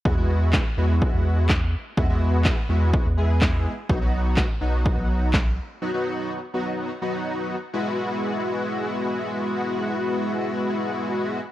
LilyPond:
<<
  \new Staff \with { instrumentName = "Analog polysynth" } { \time 4/4 \key e \major \tempo 4 = 125 <gis b e' fis'>16 <gis b e' fis'>4 r16 <gis b e' fis'>4. r4 | <gis b e' fis'>16 <gis b e' fis'>4 r16 <gis b e' fis'>8. r16 <gis b e' gis'>4~ <gis b e' gis'>16 r16 | <fis b dis' fis'>16 <fis b dis' fis'>4 r16 <fis b dis' fis'>4. r4 | <fis b dis' fis'>16 <fis b dis' fis'>4 r16 <fis b dis' fis'>8. r16 <fis b dis' fis'>4~ <fis b dis' fis'>16 r16 |
<gis b e' fis'>1~ | <gis b e' fis'>1 | }
  \new Staff \with { instrumentName = "Analog synth bass" } { \clef bass \time 4/4 \key e \major e,4. e,8. e,4.~ e,16 | e,4. e,8. e,4.~ e,16 | b,,4. b,,8. b,,4.~ b,,16 | r1 |
r1 | r1 | }
  \new DrumStaff \with { instrumentName = "Drums" } \drummode { \time 4/4 bd4 <hc bd sn>4 bd4 <hc bd sn>4 | bd4 <hc bd sn>4 bd4 <hc bd sn>4 | bd4 <hc bd sn>4 bd4 <hc bd sn>4 | r4 r4 r4 r4 |
r4 r4 r4 r4 | r4 r4 r4 r4 | }
>>